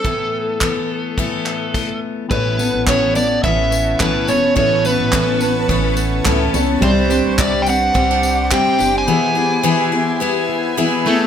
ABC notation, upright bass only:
X:1
M:4/4
L:1/16
Q:"Swing 16ths" 1/4=106
K:A
V:1 name="Upright bass" clef=bass
z16 | A,,,3 A,,,4- A,,, A,,,4 B,,,2 E,,,2 | A,,,3 A,,,4- A,,, A,,,4 C,,2 C,,2 | =C,,3 C,,4- C,, C,,4 z2 F,,,2 |
z16 |]